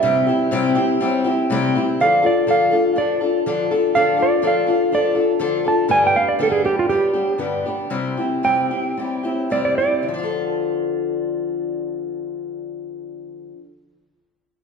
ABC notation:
X:1
M:4/4
L:1/16
Q:1/4=121
K:Ddor
V:1 name="Electric slide guitar"
e12 z4 | f2 d2 f4 d2 z6 | f2 d2 f4 d2 z4 a2 | ^g =g f d A ^G =G F G4 z4 |
z4 g8 d d d2 | z16 | z16 |]
V:2 name="Steel-string acoustic guitar"
[C,G,CEG]2 [CEG]2 [C,G,CEG]2 [CEG]2 [G,CEG]2 [CEG]2 [C,G,CEG]2 [CEG]2 | [D,F,DFA]2 [DFA]2 [D,F,DFA]2 [DFA]2 [F,DFA]2 [DFA]2 [D,F,DFA]2 [DFA]2 | [D,F,DFA]2 [DFA]2 [D,F,DFA]2 [DFA]2 [F,DFA]2 [DFA]2 [D,F,DFA]2 [DFA]2 | [G,,D,G,B,DG]2 [G,B,DG]2 [G,,D,G,B,DG]2 [G,B,DG]2 [G,B,DG]2 [G,B,DG]2 [G,,D,G,B,DG]2 [G,B,DG]2 |
[C,G,CEG]2 [CEG]2 [C,G,CEG]2 [CEG]2 [G,CEG]2 [CEG]2 [C,G,CEG]2 [CEG]2 | [D,F,DFA]16- | [D,F,DFA]16 |]